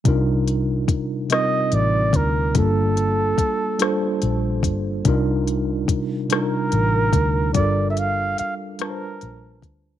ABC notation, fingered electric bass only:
X:1
M:6/8
L:1/8
Q:3/8=48
K:Cdor
V:1 name="Fingered electric bass" clef=bass
C,,2 z2 A,,, D,, | G,,,2 z2 B,,, G,,, | C,,2 z2 A,,, D,, | G,,,2 z2 B,,, D,, |]